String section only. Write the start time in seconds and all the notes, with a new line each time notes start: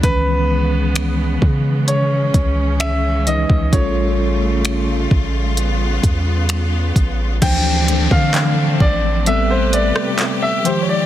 0.03 C#3 G#3 B3
1.88 C#4
3.73 G3 A3 F4
5.57 B3
7.42 D3 A3 C4 D4
9.27 C3 A3 G4 B4
10.65 D#3 F3 G#3